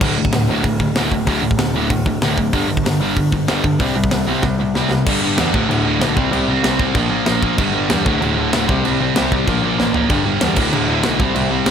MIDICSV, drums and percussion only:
0, 0, Header, 1, 2, 480
1, 0, Start_track
1, 0, Tempo, 315126
1, 17, Time_signature, 4, 2, 24, 8
1, 17834, End_track
2, 0, Start_track
2, 0, Title_t, "Drums"
2, 17, Note_on_c, 9, 36, 122
2, 17, Note_on_c, 9, 49, 106
2, 169, Note_off_c, 9, 36, 0
2, 170, Note_off_c, 9, 49, 0
2, 378, Note_on_c, 9, 36, 92
2, 497, Note_on_c, 9, 46, 60
2, 498, Note_on_c, 9, 38, 126
2, 530, Note_off_c, 9, 36, 0
2, 649, Note_off_c, 9, 46, 0
2, 651, Note_off_c, 9, 38, 0
2, 974, Note_on_c, 9, 46, 57
2, 976, Note_on_c, 9, 36, 108
2, 1126, Note_off_c, 9, 46, 0
2, 1128, Note_off_c, 9, 36, 0
2, 1217, Note_on_c, 9, 36, 84
2, 1370, Note_off_c, 9, 36, 0
2, 1457, Note_on_c, 9, 46, 58
2, 1459, Note_on_c, 9, 38, 107
2, 1609, Note_off_c, 9, 46, 0
2, 1611, Note_off_c, 9, 38, 0
2, 1700, Note_on_c, 9, 36, 78
2, 1853, Note_off_c, 9, 36, 0
2, 1932, Note_on_c, 9, 46, 57
2, 1936, Note_on_c, 9, 36, 103
2, 2084, Note_off_c, 9, 46, 0
2, 2089, Note_off_c, 9, 36, 0
2, 2297, Note_on_c, 9, 36, 93
2, 2418, Note_on_c, 9, 46, 64
2, 2419, Note_on_c, 9, 38, 125
2, 2450, Note_off_c, 9, 36, 0
2, 2570, Note_off_c, 9, 46, 0
2, 2572, Note_off_c, 9, 38, 0
2, 2897, Note_on_c, 9, 36, 107
2, 2897, Note_on_c, 9, 46, 56
2, 3050, Note_off_c, 9, 36, 0
2, 3050, Note_off_c, 9, 46, 0
2, 3137, Note_on_c, 9, 36, 86
2, 3290, Note_off_c, 9, 36, 0
2, 3380, Note_on_c, 9, 46, 58
2, 3381, Note_on_c, 9, 38, 111
2, 3532, Note_off_c, 9, 46, 0
2, 3534, Note_off_c, 9, 38, 0
2, 3619, Note_on_c, 9, 36, 79
2, 3771, Note_off_c, 9, 36, 0
2, 3853, Note_on_c, 9, 46, 63
2, 3857, Note_on_c, 9, 36, 103
2, 4005, Note_off_c, 9, 46, 0
2, 4009, Note_off_c, 9, 36, 0
2, 4222, Note_on_c, 9, 36, 99
2, 4358, Note_on_c, 9, 46, 63
2, 4359, Note_on_c, 9, 38, 117
2, 4374, Note_off_c, 9, 36, 0
2, 4510, Note_off_c, 9, 46, 0
2, 4512, Note_off_c, 9, 38, 0
2, 4823, Note_on_c, 9, 36, 111
2, 4826, Note_on_c, 9, 46, 58
2, 4975, Note_off_c, 9, 36, 0
2, 4978, Note_off_c, 9, 46, 0
2, 5063, Note_on_c, 9, 36, 85
2, 5216, Note_off_c, 9, 36, 0
2, 5305, Note_on_c, 9, 46, 51
2, 5306, Note_on_c, 9, 38, 113
2, 5457, Note_off_c, 9, 46, 0
2, 5459, Note_off_c, 9, 38, 0
2, 5547, Note_on_c, 9, 36, 94
2, 5699, Note_off_c, 9, 36, 0
2, 5786, Note_on_c, 9, 36, 111
2, 5788, Note_on_c, 9, 46, 54
2, 5939, Note_off_c, 9, 36, 0
2, 5941, Note_off_c, 9, 46, 0
2, 6148, Note_on_c, 9, 36, 96
2, 6264, Note_on_c, 9, 46, 68
2, 6265, Note_on_c, 9, 38, 120
2, 6300, Note_off_c, 9, 36, 0
2, 6416, Note_off_c, 9, 46, 0
2, 6417, Note_off_c, 9, 38, 0
2, 6739, Note_on_c, 9, 38, 57
2, 6748, Note_on_c, 9, 36, 104
2, 6891, Note_off_c, 9, 38, 0
2, 6900, Note_off_c, 9, 36, 0
2, 7241, Note_on_c, 9, 38, 88
2, 7393, Note_off_c, 9, 38, 0
2, 7479, Note_on_c, 9, 38, 82
2, 7631, Note_off_c, 9, 38, 0
2, 7716, Note_on_c, 9, 36, 127
2, 7718, Note_on_c, 9, 49, 73
2, 7718, Note_on_c, 9, 57, 127
2, 7869, Note_off_c, 9, 36, 0
2, 7870, Note_off_c, 9, 49, 0
2, 7870, Note_off_c, 9, 57, 0
2, 8192, Note_on_c, 9, 49, 73
2, 8194, Note_on_c, 9, 38, 124
2, 8345, Note_off_c, 9, 49, 0
2, 8346, Note_off_c, 9, 38, 0
2, 8439, Note_on_c, 9, 36, 107
2, 8591, Note_off_c, 9, 36, 0
2, 8694, Note_on_c, 9, 49, 62
2, 8846, Note_off_c, 9, 49, 0
2, 9161, Note_on_c, 9, 49, 61
2, 9162, Note_on_c, 9, 38, 108
2, 9313, Note_off_c, 9, 49, 0
2, 9315, Note_off_c, 9, 38, 0
2, 9395, Note_on_c, 9, 36, 109
2, 9547, Note_off_c, 9, 36, 0
2, 9641, Note_on_c, 9, 49, 66
2, 9793, Note_off_c, 9, 49, 0
2, 10116, Note_on_c, 9, 49, 71
2, 10118, Note_on_c, 9, 38, 123
2, 10268, Note_off_c, 9, 49, 0
2, 10270, Note_off_c, 9, 38, 0
2, 10350, Note_on_c, 9, 36, 94
2, 10502, Note_off_c, 9, 36, 0
2, 10582, Note_on_c, 9, 49, 66
2, 10585, Note_on_c, 9, 36, 108
2, 10734, Note_off_c, 9, 49, 0
2, 10737, Note_off_c, 9, 36, 0
2, 11062, Note_on_c, 9, 49, 62
2, 11063, Note_on_c, 9, 38, 109
2, 11214, Note_off_c, 9, 49, 0
2, 11216, Note_off_c, 9, 38, 0
2, 11310, Note_on_c, 9, 36, 85
2, 11462, Note_off_c, 9, 36, 0
2, 11551, Note_on_c, 9, 36, 118
2, 11552, Note_on_c, 9, 49, 74
2, 11704, Note_off_c, 9, 36, 0
2, 11705, Note_off_c, 9, 49, 0
2, 12031, Note_on_c, 9, 49, 69
2, 12032, Note_on_c, 9, 38, 121
2, 12183, Note_off_c, 9, 49, 0
2, 12184, Note_off_c, 9, 38, 0
2, 12277, Note_on_c, 9, 36, 106
2, 12430, Note_off_c, 9, 36, 0
2, 12520, Note_on_c, 9, 49, 56
2, 12672, Note_off_c, 9, 49, 0
2, 12993, Note_on_c, 9, 49, 66
2, 12995, Note_on_c, 9, 38, 113
2, 13145, Note_off_c, 9, 49, 0
2, 13147, Note_off_c, 9, 38, 0
2, 13236, Note_on_c, 9, 36, 106
2, 13388, Note_off_c, 9, 36, 0
2, 13477, Note_on_c, 9, 49, 61
2, 13630, Note_off_c, 9, 49, 0
2, 13951, Note_on_c, 9, 49, 68
2, 13952, Note_on_c, 9, 38, 119
2, 14103, Note_off_c, 9, 49, 0
2, 14104, Note_off_c, 9, 38, 0
2, 14195, Note_on_c, 9, 36, 86
2, 14347, Note_off_c, 9, 36, 0
2, 14431, Note_on_c, 9, 49, 59
2, 14433, Note_on_c, 9, 36, 93
2, 14584, Note_off_c, 9, 49, 0
2, 14585, Note_off_c, 9, 36, 0
2, 14923, Note_on_c, 9, 38, 66
2, 15075, Note_off_c, 9, 38, 0
2, 15146, Note_on_c, 9, 43, 84
2, 15299, Note_off_c, 9, 43, 0
2, 15377, Note_on_c, 9, 49, 75
2, 15384, Note_on_c, 9, 36, 125
2, 15529, Note_off_c, 9, 49, 0
2, 15536, Note_off_c, 9, 36, 0
2, 15857, Note_on_c, 9, 49, 68
2, 15858, Note_on_c, 9, 38, 125
2, 16009, Note_off_c, 9, 49, 0
2, 16010, Note_off_c, 9, 38, 0
2, 16088, Note_on_c, 9, 49, 109
2, 16097, Note_on_c, 9, 36, 115
2, 16240, Note_off_c, 9, 49, 0
2, 16250, Note_off_c, 9, 36, 0
2, 16338, Note_on_c, 9, 49, 65
2, 16490, Note_off_c, 9, 49, 0
2, 16807, Note_on_c, 9, 49, 59
2, 16809, Note_on_c, 9, 38, 111
2, 16959, Note_off_c, 9, 49, 0
2, 16961, Note_off_c, 9, 38, 0
2, 17056, Note_on_c, 9, 36, 111
2, 17208, Note_off_c, 9, 36, 0
2, 17296, Note_on_c, 9, 49, 68
2, 17448, Note_off_c, 9, 49, 0
2, 17763, Note_on_c, 9, 49, 67
2, 17765, Note_on_c, 9, 38, 126
2, 17834, Note_off_c, 9, 38, 0
2, 17834, Note_off_c, 9, 49, 0
2, 17834, End_track
0, 0, End_of_file